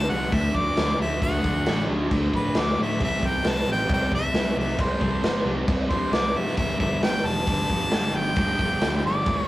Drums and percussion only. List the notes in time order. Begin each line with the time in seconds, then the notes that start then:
0.32 kick, crash
0.55 kick
0.77 snare, crash
1.22 kick, crash
1.44 kick
1.66 snare, crash
2.11 kick, crash
2.34 kick
2.55 snare, crash
2.90 snare
3.00 kick, crash
3.23 kick
3.44 snare, crash
3.89 kick, crash
4.12 kick
4.34 snare, crash
4.68 snare
4.79 kick, crash
5.01 kick
5.24 snare, crash
5.68 kick, crash
5.91 kick
6.13 snare, crash
6.47 snare
6.57 kick, crash
6.80 kick
7.03 snare, crash
7.47 kick, crash
7.70 kick
7.91 snare, crash
8.36 kick, crash
8.59 kick
8.81 snare, crash
9.26 kick, crash